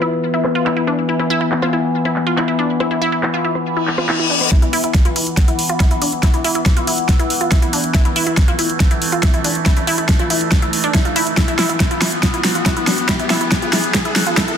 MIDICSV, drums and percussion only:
0, 0, Header, 1, 2, 480
1, 0, Start_track
1, 0, Tempo, 428571
1, 1219, Time_signature, 4, 2, 24, 8
1, 16324, End_track
2, 0, Start_track
2, 0, Title_t, "Drums"
2, 18, Note_on_c, 9, 37, 36
2, 130, Note_off_c, 9, 37, 0
2, 258, Note_on_c, 9, 42, 85
2, 370, Note_off_c, 9, 42, 0
2, 498, Note_on_c, 9, 37, 75
2, 498, Note_on_c, 9, 39, 64
2, 498, Note_on_c, 9, 42, 67
2, 610, Note_off_c, 9, 37, 0
2, 610, Note_off_c, 9, 39, 0
2, 610, Note_off_c, 9, 42, 0
2, 738, Note_on_c, 9, 39, 121
2, 850, Note_off_c, 9, 39, 0
2, 978, Note_on_c, 9, 37, 37
2, 1090, Note_off_c, 9, 37, 0
2, 1098, Note_on_c, 9, 42, 56
2, 1210, Note_off_c, 9, 42, 0
2, 1218, Note_on_c, 9, 42, 93
2, 1330, Note_off_c, 9, 42, 0
2, 1338, Note_on_c, 9, 37, 37
2, 1450, Note_off_c, 9, 37, 0
2, 1458, Note_on_c, 9, 42, 61
2, 1570, Note_off_c, 9, 42, 0
2, 1698, Note_on_c, 9, 39, 120
2, 1698, Note_on_c, 9, 42, 84
2, 1810, Note_off_c, 9, 39, 0
2, 1810, Note_off_c, 9, 42, 0
2, 1818, Note_on_c, 9, 37, 76
2, 1930, Note_off_c, 9, 37, 0
2, 2059, Note_on_c, 9, 42, 51
2, 2171, Note_off_c, 9, 42, 0
2, 2179, Note_on_c, 9, 42, 89
2, 2291, Note_off_c, 9, 42, 0
2, 2299, Note_on_c, 9, 37, 40
2, 2411, Note_off_c, 9, 37, 0
2, 2419, Note_on_c, 9, 39, 63
2, 2419, Note_on_c, 9, 42, 64
2, 2531, Note_off_c, 9, 39, 0
2, 2531, Note_off_c, 9, 42, 0
2, 2659, Note_on_c, 9, 37, 38
2, 2659, Note_on_c, 9, 39, 116
2, 2771, Note_off_c, 9, 37, 0
2, 2771, Note_off_c, 9, 39, 0
2, 3019, Note_on_c, 9, 42, 53
2, 3131, Note_off_c, 9, 42, 0
2, 3139, Note_on_c, 9, 37, 81
2, 3251, Note_off_c, 9, 37, 0
2, 3259, Note_on_c, 9, 42, 47
2, 3371, Note_off_c, 9, 42, 0
2, 3499, Note_on_c, 9, 42, 48
2, 3611, Note_off_c, 9, 42, 0
2, 3619, Note_on_c, 9, 37, 40
2, 3619, Note_on_c, 9, 39, 110
2, 3619, Note_on_c, 9, 42, 85
2, 3731, Note_off_c, 9, 37, 0
2, 3731, Note_off_c, 9, 39, 0
2, 3731, Note_off_c, 9, 42, 0
2, 3858, Note_on_c, 9, 42, 63
2, 3970, Note_off_c, 9, 42, 0
2, 3978, Note_on_c, 9, 37, 39
2, 3978, Note_on_c, 9, 42, 50
2, 4090, Note_off_c, 9, 37, 0
2, 4090, Note_off_c, 9, 42, 0
2, 4098, Note_on_c, 9, 42, 81
2, 4210, Note_off_c, 9, 42, 0
2, 4218, Note_on_c, 9, 42, 50
2, 4330, Note_off_c, 9, 42, 0
2, 4338, Note_on_c, 9, 39, 61
2, 4450, Note_off_c, 9, 39, 0
2, 4458, Note_on_c, 9, 37, 82
2, 4570, Note_off_c, 9, 37, 0
2, 4578, Note_on_c, 9, 39, 117
2, 4690, Note_off_c, 9, 39, 0
2, 4818, Note_on_c, 9, 42, 61
2, 4930, Note_off_c, 9, 42, 0
2, 4938, Note_on_c, 9, 37, 42
2, 5050, Note_off_c, 9, 37, 0
2, 5058, Note_on_c, 9, 36, 119
2, 5058, Note_on_c, 9, 38, 49
2, 5058, Note_on_c, 9, 42, 97
2, 5170, Note_off_c, 9, 36, 0
2, 5170, Note_off_c, 9, 38, 0
2, 5170, Note_off_c, 9, 42, 0
2, 5178, Note_on_c, 9, 42, 53
2, 5290, Note_off_c, 9, 42, 0
2, 5298, Note_on_c, 9, 46, 105
2, 5410, Note_off_c, 9, 46, 0
2, 5418, Note_on_c, 9, 42, 54
2, 5530, Note_off_c, 9, 42, 0
2, 5538, Note_on_c, 9, 36, 117
2, 5538, Note_on_c, 9, 38, 51
2, 5538, Note_on_c, 9, 42, 94
2, 5650, Note_off_c, 9, 36, 0
2, 5650, Note_off_c, 9, 38, 0
2, 5650, Note_off_c, 9, 42, 0
2, 5658, Note_on_c, 9, 42, 53
2, 5770, Note_off_c, 9, 42, 0
2, 5778, Note_on_c, 9, 46, 104
2, 5890, Note_off_c, 9, 46, 0
2, 5898, Note_on_c, 9, 42, 55
2, 6010, Note_off_c, 9, 42, 0
2, 6018, Note_on_c, 9, 36, 120
2, 6018, Note_on_c, 9, 38, 50
2, 6018, Note_on_c, 9, 42, 95
2, 6130, Note_off_c, 9, 36, 0
2, 6130, Note_off_c, 9, 38, 0
2, 6130, Note_off_c, 9, 42, 0
2, 6138, Note_on_c, 9, 42, 54
2, 6250, Note_off_c, 9, 42, 0
2, 6258, Note_on_c, 9, 46, 110
2, 6370, Note_off_c, 9, 46, 0
2, 6378, Note_on_c, 9, 42, 55
2, 6490, Note_off_c, 9, 42, 0
2, 6498, Note_on_c, 9, 36, 117
2, 6498, Note_on_c, 9, 38, 52
2, 6498, Note_on_c, 9, 42, 95
2, 6610, Note_off_c, 9, 36, 0
2, 6610, Note_off_c, 9, 38, 0
2, 6610, Note_off_c, 9, 42, 0
2, 6618, Note_on_c, 9, 42, 52
2, 6730, Note_off_c, 9, 42, 0
2, 6738, Note_on_c, 9, 46, 103
2, 6850, Note_off_c, 9, 46, 0
2, 6858, Note_on_c, 9, 42, 56
2, 6970, Note_off_c, 9, 42, 0
2, 6978, Note_on_c, 9, 36, 123
2, 6978, Note_on_c, 9, 38, 54
2, 6978, Note_on_c, 9, 42, 96
2, 7090, Note_off_c, 9, 36, 0
2, 7090, Note_off_c, 9, 38, 0
2, 7090, Note_off_c, 9, 42, 0
2, 7098, Note_on_c, 9, 42, 51
2, 7210, Note_off_c, 9, 42, 0
2, 7218, Note_on_c, 9, 46, 109
2, 7330, Note_off_c, 9, 46, 0
2, 7338, Note_on_c, 9, 42, 52
2, 7450, Note_off_c, 9, 42, 0
2, 7458, Note_on_c, 9, 36, 122
2, 7458, Note_on_c, 9, 38, 56
2, 7458, Note_on_c, 9, 42, 93
2, 7570, Note_off_c, 9, 36, 0
2, 7570, Note_off_c, 9, 38, 0
2, 7570, Note_off_c, 9, 42, 0
2, 7578, Note_on_c, 9, 42, 54
2, 7690, Note_off_c, 9, 42, 0
2, 7698, Note_on_c, 9, 46, 107
2, 7810, Note_off_c, 9, 46, 0
2, 7818, Note_on_c, 9, 42, 53
2, 7930, Note_off_c, 9, 42, 0
2, 7938, Note_on_c, 9, 36, 123
2, 7938, Note_on_c, 9, 38, 56
2, 7938, Note_on_c, 9, 42, 89
2, 8050, Note_off_c, 9, 36, 0
2, 8050, Note_off_c, 9, 38, 0
2, 8050, Note_off_c, 9, 42, 0
2, 8058, Note_on_c, 9, 42, 53
2, 8170, Note_off_c, 9, 42, 0
2, 8178, Note_on_c, 9, 46, 109
2, 8290, Note_off_c, 9, 46, 0
2, 8298, Note_on_c, 9, 42, 54
2, 8410, Note_off_c, 9, 42, 0
2, 8418, Note_on_c, 9, 36, 125
2, 8418, Note_on_c, 9, 38, 60
2, 8418, Note_on_c, 9, 42, 93
2, 8530, Note_off_c, 9, 36, 0
2, 8530, Note_off_c, 9, 38, 0
2, 8530, Note_off_c, 9, 42, 0
2, 8538, Note_on_c, 9, 42, 53
2, 8650, Note_off_c, 9, 42, 0
2, 8658, Note_on_c, 9, 46, 110
2, 8770, Note_off_c, 9, 46, 0
2, 8778, Note_on_c, 9, 42, 55
2, 8890, Note_off_c, 9, 42, 0
2, 8898, Note_on_c, 9, 36, 127
2, 8898, Note_on_c, 9, 38, 60
2, 8898, Note_on_c, 9, 42, 94
2, 9010, Note_off_c, 9, 36, 0
2, 9010, Note_off_c, 9, 38, 0
2, 9010, Note_off_c, 9, 42, 0
2, 9018, Note_on_c, 9, 42, 49
2, 9130, Note_off_c, 9, 42, 0
2, 9138, Note_on_c, 9, 46, 110
2, 9250, Note_off_c, 9, 46, 0
2, 9258, Note_on_c, 9, 42, 52
2, 9370, Note_off_c, 9, 42, 0
2, 9378, Note_on_c, 9, 36, 124
2, 9378, Note_on_c, 9, 38, 61
2, 9378, Note_on_c, 9, 42, 89
2, 9490, Note_off_c, 9, 36, 0
2, 9490, Note_off_c, 9, 38, 0
2, 9490, Note_off_c, 9, 42, 0
2, 9498, Note_on_c, 9, 42, 51
2, 9610, Note_off_c, 9, 42, 0
2, 9618, Note_on_c, 9, 46, 109
2, 9730, Note_off_c, 9, 46, 0
2, 9738, Note_on_c, 9, 42, 51
2, 9850, Note_off_c, 9, 42, 0
2, 9858, Note_on_c, 9, 36, 127
2, 9858, Note_on_c, 9, 38, 59
2, 9858, Note_on_c, 9, 42, 88
2, 9970, Note_off_c, 9, 36, 0
2, 9970, Note_off_c, 9, 38, 0
2, 9970, Note_off_c, 9, 42, 0
2, 9978, Note_on_c, 9, 42, 52
2, 10090, Note_off_c, 9, 42, 0
2, 10098, Note_on_c, 9, 46, 108
2, 10210, Note_off_c, 9, 46, 0
2, 10218, Note_on_c, 9, 42, 53
2, 10330, Note_off_c, 9, 42, 0
2, 10338, Note_on_c, 9, 36, 119
2, 10338, Note_on_c, 9, 38, 66
2, 10338, Note_on_c, 9, 42, 93
2, 10450, Note_off_c, 9, 36, 0
2, 10450, Note_off_c, 9, 38, 0
2, 10450, Note_off_c, 9, 42, 0
2, 10458, Note_on_c, 9, 42, 49
2, 10570, Note_off_c, 9, 42, 0
2, 10578, Note_on_c, 9, 46, 113
2, 10690, Note_off_c, 9, 46, 0
2, 10698, Note_on_c, 9, 42, 54
2, 10810, Note_off_c, 9, 42, 0
2, 10818, Note_on_c, 9, 36, 127
2, 10818, Note_on_c, 9, 38, 68
2, 10818, Note_on_c, 9, 42, 90
2, 10930, Note_off_c, 9, 36, 0
2, 10930, Note_off_c, 9, 38, 0
2, 10930, Note_off_c, 9, 42, 0
2, 10938, Note_on_c, 9, 42, 50
2, 11050, Note_off_c, 9, 42, 0
2, 11058, Note_on_c, 9, 46, 113
2, 11170, Note_off_c, 9, 46, 0
2, 11178, Note_on_c, 9, 42, 50
2, 11290, Note_off_c, 9, 42, 0
2, 11298, Note_on_c, 9, 36, 123
2, 11298, Note_on_c, 9, 38, 69
2, 11298, Note_on_c, 9, 42, 87
2, 11410, Note_off_c, 9, 36, 0
2, 11410, Note_off_c, 9, 38, 0
2, 11410, Note_off_c, 9, 42, 0
2, 11418, Note_on_c, 9, 42, 50
2, 11530, Note_off_c, 9, 42, 0
2, 11538, Note_on_c, 9, 46, 109
2, 11650, Note_off_c, 9, 46, 0
2, 11658, Note_on_c, 9, 42, 50
2, 11770, Note_off_c, 9, 42, 0
2, 11778, Note_on_c, 9, 36, 126
2, 11778, Note_on_c, 9, 38, 69
2, 11778, Note_on_c, 9, 42, 89
2, 11890, Note_off_c, 9, 36, 0
2, 11890, Note_off_c, 9, 38, 0
2, 11890, Note_off_c, 9, 42, 0
2, 11898, Note_on_c, 9, 42, 52
2, 12010, Note_off_c, 9, 42, 0
2, 12018, Note_on_c, 9, 46, 114
2, 12130, Note_off_c, 9, 46, 0
2, 12138, Note_on_c, 9, 42, 52
2, 12250, Note_off_c, 9, 42, 0
2, 12258, Note_on_c, 9, 36, 121
2, 12258, Note_on_c, 9, 38, 75
2, 12258, Note_on_c, 9, 42, 90
2, 12370, Note_off_c, 9, 36, 0
2, 12370, Note_off_c, 9, 38, 0
2, 12370, Note_off_c, 9, 42, 0
2, 12378, Note_on_c, 9, 42, 47
2, 12490, Note_off_c, 9, 42, 0
2, 12498, Note_on_c, 9, 46, 113
2, 12610, Note_off_c, 9, 46, 0
2, 12618, Note_on_c, 9, 42, 52
2, 12730, Note_off_c, 9, 42, 0
2, 12738, Note_on_c, 9, 36, 123
2, 12738, Note_on_c, 9, 38, 76
2, 12738, Note_on_c, 9, 42, 92
2, 12850, Note_off_c, 9, 36, 0
2, 12850, Note_off_c, 9, 38, 0
2, 12850, Note_off_c, 9, 42, 0
2, 12858, Note_on_c, 9, 42, 49
2, 12970, Note_off_c, 9, 42, 0
2, 12978, Note_on_c, 9, 38, 72
2, 12978, Note_on_c, 9, 46, 104
2, 13090, Note_off_c, 9, 38, 0
2, 13090, Note_off_c, 9, 46, 0
2, 13098, Note_on_c, 9, 42, 52
2, 13210, Note_off_c, 9, 42, 0
2, 13218, Note_on_c, 9, 36, 123
2, 13218, Note_on_c, 9, 38, 73
2, 13218, Note_on_c, 9, 42, 87
2, 13330, Note_off_c, 9, 36, 0
2, 13330, Note_off_c, 9, 38, 0
2, 13330, Note_off_c, 9, 42, 0
2, 13338, Note_on_c, 9, 42, 51
2, 13450, Note_off_c, 9, 42, 0
2, 13458, Note_on_c, 9, 38, 74
2, 13458, Note_on_c, 9, 46, 108
2, 13570, Note_off_c, 9, 38, 0
2, 13570, Note_off_c, 9, 46, 0
2, 13698, Note_on_c, 9, 36, 117
2, 13698, Note_on_c, 9, 38, 77
2, 13698, Note_on_c, 9, 42, 83
2, 13810, Note_off_c, 9, 36, 0
2, 13810, Note_off_c, 9, 38, 0
2, 13810, Note_off_c, 9, 42, 0
2, 13818, Note_on_c, 9, 42, 51
2, 13930, Note_off_c, 9, 42, 0
2, 13938, Note_on_c, 9, 38, 85
2, 13938, Note_on_c, 9, 46, 110
2, 14050, Note_off_c, 9, 38, 0
2, 14050, Note_off_c, 9, 46, 0
2, 14058, Note_on_c, 9, 42, 50
2, 14170, Note_off_c, 9, 42, 0
2, 14178, Note_on_c, 9, 36, 119
2, 14178, Note_on_c, 9, 38, 83
2, 14178, Note_on_c, 9, 42, 92
2, 14290, Note_off_c, 9, 36, 0
2, 14290, Note_off_c, 9, 38, 0
2, 14290, Note_off_c, 9, 42, 0
2, 14298, Note_on_c, 9, 42, 50
2, 14410, Note_off_c, 9, 42, 0
2, 14418, Note_on_c, 9, 38, 83
2, 14418, Note_on_c, 9, 46, 108
2, 14530, Note_off_c, 9, 38, 0
2, 14530, Note_off_c, 9, 46, 0
2, 14538, Note_on_c, 9, 42, 53
2, 14650, Note_off_c, 9, 42, 0
2, 14658, Note_on_c, 9, 36, 118
2, 14658, Note_on_c, 9, 38, 86
2, 14658, Note_on_c, 9, 42, 96
2, 14770, Note_off_c, 9, 36, 0
2, 14770, Note_off_c, 9, 38, 0
2, 14770, Note_off_c, 9, 42, 0
2, 14778, Note_on_c, 9, 42, 52
2, 14890, Note_off_c, 9, 42, 0
2, 14898, Note_on_c, 9, 38, 83
2, 14898, Note_on_c, 9, 46, 101
2, 15010, Note_off_c, 9, 38, 0
2, 15010, Note_off_c, 9, 46, 0
2, 15018, Note_on_c, 9, 42, 53
2, 15130, Note_off_c, 9, 42, 0
2, 15138, Note_on_c, 9, 36, 119
2, 15138, Note_on_c, 9, 38, 85
2, 15138, Note_on_c, 9, 42, 95
2, 15250, Note_off_c, 9, 36, 0
2, 15250, Note_off_c, 9, 38, 0
2, 15250, Note_off_c, 9, 42, 0
2, 15258, Note_on_c, 9, 42, 51
2, 15370, Note_off_c, 9, 42, 0
2, 15378, Note_on_c, 9, 38, 90
2, 15378, Note_on_c, 9, 46, 100
2, 15490, Note_off_c, 9, 38, 0
2, 15490, Note_off_c, 9, 46, 0
2, 15498, Note_on_c, 9, 42, 53
2, 15610, Note_off_c, 9, 42, 0
2, 15618, Note_on_c, 9, 36, 116
2, 15618, Note_on_c, 9, 38, 87
2, 15618, Note_on_c, 9, 42, 90
2, 15730, Note_off_c, 9, 36, 0
2, 15730, Note_off_c, 9, 38, 0
2, 15730, Note_off_c, 9, 42, 0
2, 15738, Note_on_c, 9, 42, 55
2, 15850, Note_off_c, 9, 42, 0
2, 15858, Note_on_c, 9, 38, 93
2, 15858, Note_on_c, 9, 46, 107
2, 15970, Note_off_c, 9, 38, 0
2, 15970, Note_off_c, 9, 46, 0
2, 15978, Note_on_c, 9, 42, 54
2, 16090, Note_off_c, 9, 42, 0
2, 16098, Note_on_c, 9, 36, 116
2, 16098, Note_on_c, 9, 38, 88
2, 16098, Note_on_c, 9, 42, 93
2, 16210, Note_off_c, 9, 36, 0
2, 16210, Note_off_c, 9, 38, 0
2, 16210, Note_off_c, 9, 42, 0
2, 16218, Note_on_c, 9, 42, 53
2, 16324, Note_off_c, 9, 42, 0
2, 16324, End_track
0, 0, End_of_file